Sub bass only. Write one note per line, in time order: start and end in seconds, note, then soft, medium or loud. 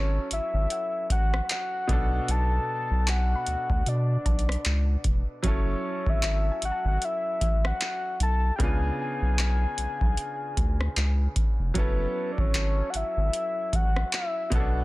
0.00 0.19 G#1 medium
0.31 0.40 G#1 soft
0.54 0.67 G#1 medium
1.10 1.41 A1 loud
1.89 2.20 B1 loud
2.28 2.59 B1 loud
2.91 3.35 B1 medium
3.47 3.56 D2 soft
3.70 3.83 D2 loud
3.86 4.17 B2 loud
4.26 4.57 B1 loud
4.66 4.96 C#2 loud
5.05 5.23 E1 medium
5.44 5.75 F#1 loud
6.06 6.50 G#1 medium
6.62 6.71 G#1 medium
6.85 6.98 G#1 loud
7.41 7.72 A1 medium
8.20 8.51 B1 medium
8.60 8.91 C#2 loud
9.22 9.66 B1 medium
9.78 9.87 B1 medium
10.01 10.14 B1 medium
10.57 10.88 D2 loud
10.96 11.28 C#2 medium
11.59 11.72 F1 medium
11.76 12.07 F#1 loud
12.38 12.82 G#1 medium
12.94 13.03 G#1 medium
13.17 13.30 G#1 medium
13.73 14.04 A1 medium
14.52 14.83 B1 medium